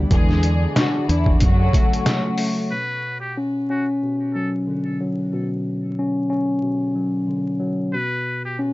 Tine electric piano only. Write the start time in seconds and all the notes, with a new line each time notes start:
Already playing: D3 E3 G3
0.12 D3
0.76 D4
1.08 D4
1.39 C#3
1.75 A3
2.07 F#3
2.39 A3
2.72 B2
3.37 C#4
3.70 C#4
4.03 B2
4.36 F#3
4.67 D3
5.00 F#3
5.33 B2
5.99 C#4
6.30 C#4
6.62 B2
6.95 F#3
7.28 D3
7.60 F#3
7.94 B2
8.59 C#4